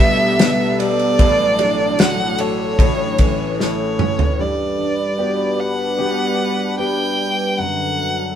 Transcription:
Already playing: grand piano B1 B2 G3 B3 D4, analog synth pad B2 G3 B3 A4, steel-string acoustic guitar B2 G3 A3 D4 G4, violin E5
0.39 grand piano B3, snare, ride
0.79 grand piano G3, violin D5, ride
0.99 ride
1.19 grand piano A1 A2, analog synth pad A2 F#3 D4, steel-string acoustic guitar A2, kick, ride
1.59 grand piano F#3, steel-string acoustic guitar D4, ride
1.99 steel-string acoustic guitar A3 D4 F#4, grand piano F#4, violin F#5, snare, ride
2.38 steel-string acoustic guitar A3, grand piano A4, violin C#5, ride
2.78 grand piano A1 A2, steel-string acoustic guitar A2, analog synth pad E3 C#4, kick, ride
3.18 grand piano E3, kick, ride
3.59 grand piano A3, violin C#5, snare
3.99 grand piano C#4, mid tom
4.19 floor tom
4.39 grand piano G2, analog synth pad G3 D4 B4, steel-string acoustic guitar G3, violin D5
4.79 steel-string acoustic guitar D4
5.18 grand piano B3 F#4 G4, steel-string acoustic guitar F#4
5.60 violin F#5
5.98 grand piano B3 F#4 G4, steel-string acoustic guitar B3 D4
6.78 grand piano B3 D4 G4, steel-string acoustic guitar D4, violin G5
7.58 grand piano F#2, steel-string acoustic guitar F#2, analog synth pad D3 F#3 A4, violin F#5
7.99 steel-string acoustic guitar D4

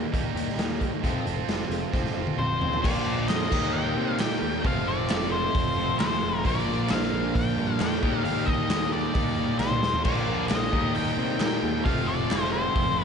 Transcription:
Already playing: overdriven electric guitar D#3 G3 A#3 D#4 G4
0.12 picked electric bass D#2, overdriven electric guitar D#3 G3 A#3 D#4 G4, kick, closed hi-hat
0.34 picked electric bass D#2, overdriven electric guitar D#3 A#3, closed hi-hat
0.49 snare
0.58 picked electric bass D#2, overdriven electric guitar D#3 A#3, snare, closed hi-hat
0.80 overdriven electric guitar D#3 A#3, kick, closed hi-hat
1.03 picked electric bass F1, overdriven electric guitar F2 C3 F3 C4 F4 A4, kick, closed hi-hat
1.25 picked electric bass F1, overdriven electric guitar F2 C3, closed hi-hat
1.48 picked electric bass F1, overdriven electric guitar F2 C3, snare, closed hi-hat
1.70 picked electric bass F1, overdriven electric guitar F2 C3, closed hi-hat
1.93 picked electric bass F1, overdriven electric guitar F2 C3 F3 C4 F4 A4, kick, snare
2.06 snare
2.15 picked electric bass F1, overdriven electric guitar F2 C3
2.27 high tom
2.38 picked electric bass F1, overdriven electric guitar F2 C3, lead electric guitar C5, mid tom
2.52 tonewheel organ B3 C4
2.57 tonewheel organ D4 E4
2.61 overdriven electric guitar F2 C3, tonewheel organ F4 G4, floor tom
2.69 tonewheel organ A4 B4
2.73 tonewheel organ C5, floor tom
2.78 tonewheel organ D5 E5
2.82 picked electric bass A#1, overdriven electric guitar A#2 F3 A#3 D4 F4, tonewheel organ A#3 D4 F4 A#4, lead electric guitar D5, kick, crash
2.86 overdriven electric guitar A#4
3.06 picked electric bass A#1
3.29 picked electric bass F2, lead electric guitar D#5, snare, clap, open hi-hat
3.50 picked electric bass D#2, overdriven electric guitar D#3 G3 A#3 D#4 G4 A#4, tonewheel organ A#3 D#4 G4 A#4, kick, crash
3.73 picked electric bass D#2, lead electric guitar G5
3.97 picked electric bass C3
4.19 picked electric bass A#2, lead electric guitar G5, snare, clap, open hi-hat
4.42 picked electric bass D#2
4.63 picked electric bass F1, overdriven electric guitar F2 C3 F3 A3 C4 F4 A4, tonewheel organ A3 C4 F4 A4, lead electric guitar F5, kick, open hi-hat
4.87 picked electric bass F1, lead electric guitar D5
5.09 picked electric bass F1, snare, clap, open hi-hat
5.32 lead electric guitar C5
5.55 picked electric bass F1, kick, open hi-hat
5.77 overdriven electric guitar F2 C3 F3
5.99 picked electric bass D#2, overdriven electric guitar F2 C3 F3, lead electric guitar C5, snare, clap, open hi-hat
6.24 picked electric bass F1
6.44 picked electric bass A#1, overdriven electric guitar A#2 F3 A#3 D4 F4 A#4, tonewheel organ A#3 D4 F4 A#4, lead electric guitar D5, kick, open hi-hat
6.68 picked electric bass A#1
6.89 picked electric bass A#1, lead electric guitar F5, snare, clap, open hi-hat
7.12 picked electric bass A#1
7.35 picked electric bass A#1, lead electric guitar G5, kick, open hi-hat
7.57 picked electric bass G2, overdriven electric guitar A#2 F3 A#3
7.79 picked electric bass F2, overdriven electric guitar A#2 F3 A#3, lead electric guitar G5, snare, clap, open hi-hat
8.01 picked electric bass D#2, overdriven electric guitar D#3 G3 A#3 D#4 G4 A#4, tonewheel organ A#3 D#4 G4 A#4, kick
8.24 picked electric bass D#2, lead electric guitar F5, open hi-hat
8.46 picked electric bass D#2, lead electric guitar D#5, kick
8.69 picked electric bass D#2, snare, clap, open hi-hat
8.92 lead electric guitar D5
9.14 picked electric bass D#2, overdriven electric guitar D#3 A#3 D#4, kick, open hi-hat
9.37 overdriven electric guitar D#3 A#3 D#4
9.59 picked electric bass C2, lead electric guitar C5, snare, clap
9.71 mid tom
9.82 picked electric bass D#2, snare
9.94 floor tom
10.04 picked electric bass A#1, overdriven electric guitar A#2 F3 A#3 D4 F4, tonewheel organ A#3 D4 F4 A#4, lead electric guitar D5, kick, crash
10.08 overdriven electric guitar A#4
10.28 picked electric bass A#1
10.48 picked electric bass A#1, lead electric guitar D#5, snare, clap, open hi-hat
10.71 picked electric bass D#2, overdriven electric guitar D#3 G3 A#3 D#4 G4 A#4, tonewheel organ A#3 D#4 G4 A#4, kick
10.95 picked electric bass D#2, lead electric guitar G5, open hi-hat
11.18 picked electric bass C3
11.40 picked electric bass A#2, lead electric guitar G5, snare, clap, open hi-hat
11.63 picked electric bass D#2
11.84 picked electric bass F1, overdriven electric guitar F2 C3 F3 A3 C4 F4 A4, tonewheel organ A3 C4 F4 A4, lead electric guitar F5, kick, open hi-hat
12.07 picked electric bass F1, lead electric guitar D5
12.31 picked electric bass F1, snare, clap, open hi-hat
12.52 lead electric guitar C5
12.75 picked electric bass F1, kick, open hi-hat
12.96 overdriven electric guitar F2 C3 F3

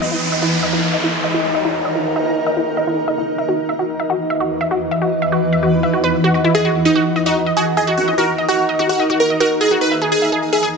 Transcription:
0.02 ambient pad D#4, synth drone D#4 D#5, synth arpeggio sound D#5, downlifter
0.12 synth arpeggio sound E4
0.20 ambient pad A#5
0.32 synth arpeggio sound D#5
0.42 synth arpeggio sound E4
0.63 synth arpeggio sound D#5
0.71 synth arpeggio sound E4, ambient pad A#4
0.93 synth arpeggio sound D#5
1.04 synth arpeggio sound E4
1.24 synth arpeggio sound D#5
1.34 synth arpeggio sound E4
1.55 synth arpeggio sound D#5
1.65 synth arpeggio sound E4
1.85 synth arpeggio sound D#5
1.95 synth arpeggio sound E4
2.16 synth arpeggio sound D#5
2.26 synth arpeggio sound E4
2.46 synth arpeggio sound D#5
2.57 synth arpeggio sound E4
2.77 synth arpeggio sound D#5
2.87 synth arpeggio sound E4
3.08 synth arpeggio sound D#5
3.18 synth arpeggio sound E4
3.28 ambient pad E3
3.38 synth arpeggio sound E5
3.49 synth arpeggio sound F#4
3.69 synth arpeggio sound E5
3.75 ambient pad B4
3.79 synth arpeggio sound F#4
4.00 synth arpeggio sound E5
4.10 synth arpeggio sound F#4
4.30 synth arpeggio sound E5
4.40 synth arpeggio sound F#4
4.61 synth arpeggio sound E5, ambient pad B5
4.71 synth arpeggio sound F#4
4.91 synth arpeggio sound E5
5.02 synth arpeggio sound F#4
5.22 synth arpeggio sound E5
5.32 synth arpeggio sound F#4
5.53 synth arpeggio sound E5
5.63 synth arpeggio sound F#4
5.83 synth arpeggio sound E5
5.93 synth arpeggio sound F#4
6.04 synth arpeggio sound B4
6.24 synth arpeggio sound F#4
6.34 synth arpeggio sound F#4
6.44 synth arpeggio sound E4
6.55 ambient pad D#4, supersaw synth G#4, synth arpeggio sound D#5
6.65 synth arpeggio sound F#4
6.81 ambient pad A#5
6.85 supersaw synth D#4, synth arpeggio sound D#5
6.95 synth arpeggio sound F#4
7.12 ambient pad A#4, synth arpeggio sound D#5
7.26 supersaw synth D#4, synth arpeggio sound F#4
7.46 synth arpeggio sound D#5
7.57 synth arpeggio sound F#4, supersaw synth G#4
7.77 supersaw synth G#4, synth arpeggio sound D#5
7.87 synth arpeggio sound F#4
7.97 wobble bass A#3, supersaw synth F#4
8.08 wobble bass D#4, synth arpeggio sound D#5
8.18 wobble bass D#4, synth arpeggio sound F#4, supersaw synth A#4
8.38 synth arpeggio sound D#5
8.48 supersaw synth F#4, synth arpeggio sound F#4
8.69 synth arpeggio sound D#5
8.79 synth arpeggio sound F#4, wobble bass F#4
8.89 supersaw synth F#4
9.00 synth arpeggio sound D#5
9.10 synth arpeggio sound F#4
9.20 wobble bass D#4, supersaw synth A#4
9.30 synth arpeggio sound D#5
9.40 synth arpeggio sound F#4, supersaw synth A#4
9.61 supersaw synth G#4, synth arpeggio sound D#5
9.71 synth arpeggio sound F#4
9.81 ambient pad E3, supersaw synth B4
9.91 synth arpeggio sound E5
9.98 synth arpeggio sound G#4, ambient pad B4
10.12 supersaw synth G#4
10.22 synth arpeggio sound E5
10.32 synth arpeggio sound G#4
10.53 supersaw synth G#4, synth arpeggio sound E5
10.60 synth arpeggio sound G#4, ambient pad B5

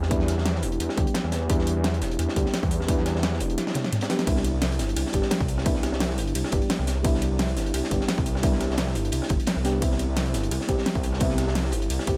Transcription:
Already playing: fm electric piano G3 B3 D4 E4 G4
0.02 cross-stick, snare
0.09 detuned saw bass E2, fm electric piano G3 B3 D4 E4, kick, closed hi-hat
0.20 snare
0.28 cross-stick, snare, closed hi-hat
0.37 detuned saw bass E2, snare
0.46 snare, closed hi-hat
0.55 cross-stick, snare
0.63 detuned saw bass E1, closed hi-hat, open hi-hat
0.72 closed hi-hat
0.80 detuned saw bass E2, closed hi-hat
0.89 cross-stick, snare
0.96 detuned saw bass D2, fm electric piano G3 B3 D4 G4, kick, closed hi-hat
1.07 closed hi-hat
1.14 snare, closed hi-hat
1.24 detuned saw bass E2, cross-stick
1.32 snare, closed hi-hat, open hi-hat
1.48 detuned saw bass E2, fm electric piano G3 B3 D4 E4, kick, closed hi-hat
1.59 snare
1.67 closed hi-hat
1.76 detuned saw bass E2
1.84 snare, closed hi-hat
1.94 closed hi-hat
2.01 detuned saw bass E1, snare, closed hi-hat, open hi-hat
2.11 closed hi-hat
2.19 detuned saw bass E2, cross-stick, closed hi-hat
2.29 snare
2.35 detuned saw bass D2, fm electric piano G3 B3 D4 G4, kick, closed hi-hat
2.46 snare
2.54 snare, closed hi-hat
2.63 detuned saw bass E2, kick, closed hi-hat
2.71 closed hi-hat, open hi-hat
2.80 cross-stick, snare
2.87 detuned saw bass E2, fm electric piano G3 B3 D4 E4, kick, closed hi-hat
2.98 snare
3.05 cross-stick, snare, closed hi-hat
3.15 detuned saw bass E2, snare
3.23 snare, closed hi-hat
3.33 cross-stick, snare
3.40 detuned saw bass E1, closed hi-hat, open hi-hat
3.50 closed hi-hat
3.58 snare, closed hi-hat
3.67 snare
3.74 snare, closed hi-hat, high tom
3.84 snare, closed hi-hat
3.92 snare, closed hi-hat, mid tom
4.01 snare, closed hi-hat
4.09 fm electric piano G3 B3 D4 G4, snare, closed hi-hat, open hi-hat
4.19 snare, closed hi-hat
4.26 detuned saw bass C2, fm electric piano G3 B3 D4 E4, kick, closed hi-hat, ride
4.36 snare
4.45 closed hi-hat
4.54 detuned saw bass C2
4.62 snare, closed hi-hat, ride
4.72 closed hi-hat
4.79 detuned saw bass G1, snare, closed hi-hat, open hi-hat
4.89 closed hi-hat
4.97 detuned saw bass C2, cross-stick, closed hi-hat, ride
5.06 snare
5.12 detuned saw bass G1, fm electric piano G3 B3 D4 G4, kick, closed hi-hat
5.22 snare
5.31 snare, closed hi-hat, ride
5.40 detuned saw bass C2, kick, closed hi-hat
5.48 closed hi-hat, open hi-hat
5.58 cross-stick, snare
5.64 detuned saw bass C2, fm electric piano G3 B3 D4 E4, kick, closed hi-hat, ride
5.75 snare
5.83 cross-stick, snare, closed hi-hat
5.92 detuned saw bass C2, snare
6.00 snare, closed hi-hat, ride
6.10 cross-stick, snare
6.18 detuned saw bass G1, closed hi-hat, open hi-hat
6.27 closed hi-hat
6.35 detuned saw bass C2, closed hi-hat, ride
6.44 cross-stick, snare
6.51 detuned saw bass G1, fm electric piano G3 B3 D4 G4, kick, closed hi-hat
6.62 closed hi-hat
6.70 snare, closed hi-hat, ride
6.79 detuned saw bass C2, cross-stick
6.87 snare, closed hi-hat, open hi-hat
7.03 detuned saw bass C2, fm electric piano G3 B3 D4 E4, kick, closed hi-hat, ride
7.14 snare
7.22 closed hi-hat
7.31 detuned saw bass C2
7.39 snare, closed hi-hat, ride
7.48 closed hi-hat
7.57 detuned saw bass G1, snare, closed hi-hat, open hi-hat
7.66 closed hi-hat
7.74 detuned saw bass C2, cross-stick, closed hi-hat, ride
7.83 snare
7.90 detuned saw bass G1, fm electric piano G3 B3 D4 G4, kick, closed hi-hat
8.01 snare
8.08 snare, closed hi-hat, ride
8.18 detuned saw bass C2, kick, closed hi-hat
8.26 closed hi-hat, open hi-hat
8.35 cross-stick, snare
8.42 detuned saw bass C2, fm electric piano G3 B3 D4 E4, kick, closed hi-hat, ride
8.52 snare
8.60 cross-stick, snare, closed hi-hat
8.70 detuned saw bass C2, snare
8.77 snare, closed hi-hat, ride
8.87 cross-stick, snare
8.95 detuned saw bass G1, closed hi-hat, open hi-hat
9.05 closed hi-hat
9.12 detuned saw bass C2, closed hi-hat, ride
9.22 cross-stick, snare
9.29 detuned saw bass G1, kick, closed hi-hat
9.40 closed hi-hat
9.47 snare, closed hi-hat, ride
9.57 detuned saw bass C2, cross-stick
9.64 fm electric piano G3 B3 D4 G4, snare, closed hi-hat, open hi-hat
9.80 detuned saw bass C2, fm electric piano G3 B3 C4 E4, kick, closed hi-hat, ride
9.91 snare
9.99 closed hi-hat
10.09 detuned saw bass C2
10.17 snare, closed hi-hat, ride
10.26 closed hi-hat
10.33 detuned saw bass G1, snare, closed hi-hat, open hi-hat
10.43 closed hi-hat
10.51 detuned saw bass C2, cross-stick, closed hi-hat, ride
10.61 snare
10.67 detuned saw bass C2, fm electric piano G3 B3 C4 G4, kick, closed hi-hat
10.78 snare
10.86 snare, closed hi-hat, ride
10.95 detuned saw bass C2, kick, closed hi-hat
11.03 closed hi-hat, open hi-hat
11.13 cross-stick, snare
11.19 detuned saw bass C2, fm electric piano G3 B3 C4 E4, kick, closed hi-hat, ride
11.30 snare
11.38 cross-stick, snare, closed hi-hat
11.47 detuned saw bass C2, snare
11.55 snare, closed hi-hat, ride
11.64 cross-stick, snare
11.72 detuned saw bass G1, closed hi-hat, open hi-hat
11.82 closed hi-hat
11.90 detuned saw bass C2, closed hi-hat, ride
11.99 cross-stick, snare
12.06 detuned saw bass C2, fm electric piano G3 B3 C4 G4, kick, closed hi-hat

